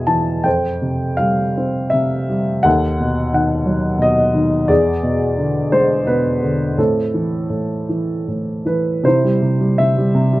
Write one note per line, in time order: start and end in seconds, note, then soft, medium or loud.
0.00 0.41 E2 soft
0.00 0.48 B2 soft
0.00 0.07 E3 soft
0.00 0.42 G#3 soft
0.00 0.48 G#4 soft
0.00 0.47 B4 soft
0.00 0.47 E5 medium
0.00 0.47 G#5 medium
0.07 0.44 E3 soft
0.07 0.46 A5 medium
0.44 2.60 F2 soft
0.44 1.54 C5 soft
0.44 1.22 G5 medium
0.82 1.92 C3 soft
1.17 2.28 G3 soft
1.17 1.94 F5 medium
1.57 2.62 C4 soft
1.90 2.63 C3 soft
1.90 2.66 E5 medium
2.29 2.64 G3 soft
2.63 4.66 D#2 medium
2.63 3.64 A4 soft
2.63 3.33 F#5 medium
3.00 3.97 B2 soft
3.33 4.33 D#3 soft
3.33 4.04 F#5 medium
3.66 4.66 F#3 soft
3.99 4.67 B2 soft
3.99 4.49 D#5 medium
4.34 4.68 D#3 soft
4.68 6.74 E2 soft
4.68 5.70 G#4 soft
4.68 5.76 D5 medium
5.03 6.06 B2 soft
5.38 6.42 D3 soft
5.72 6.75 G#3 soft
5.72 6.09 C5 medium
6.07 6.76 B2 soft
6.07 6.80 B4 medium
6.43 6.77 D3 soft
6.78 7.48 A2 soft
6.78 8.63 C4 soft
6.78 8.63 A4 soft
7.14 7.88 E3 soft
7.50 8.26 A2 soft
7.89 8.64 E3 soft
8.28 9.03 A2 soft
8.65 9.03 E3 soft
8.65 9.06 B4 soft
9.04 9.40 C3 medium
9.04 10.12 E4 soft
9.04 9.81 C5 medium
9.24 9.59 G3 soft
9.42 9.77 C3 soft
9.61 9.96 G3 soft
9.78 10.13 C3 soft
9.78 10.40 E5 medium
9.98 10.31 G3 soft
10.15 10.40 C3 medium
10.33 10.40 G3 soft